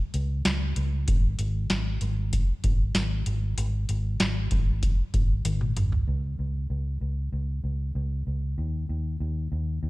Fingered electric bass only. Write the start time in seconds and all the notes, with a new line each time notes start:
0.14 C#2
0.46 C#2
0.76 C#2
1.08 G#1
1.39 G#1
1.70 G#1
2.02 G#1
2.64 G#1
2.95 G#1
3.26 G#1
3.58 G#1
3.89 G#1
4.20 G#1
4.52 G#1
5.14 G#1
5.45 G#1
5.76 G#1
6.08 C#2
6.39 C#2
6.70 C#2
7.01 C#2
7.33 C#2
7.64 C#2
7.95 C#2
8.27 C#2
8.58 D#2
8.89 D#2
9.20 D#2
9.52 D#2
9.83 D#2